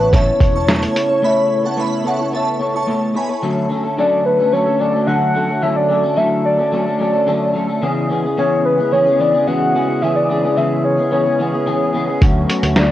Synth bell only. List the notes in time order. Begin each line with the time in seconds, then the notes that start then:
0.14 E5 A5
0.56 A5 C#6
0.68 A5 C#6
1.24 E5 B5
1.65 F#5 A5
1.80 E5 B5
2.07 F#5 A5
2.35 E5 A5
2.76 A5 C#6
3.16 G#5 B5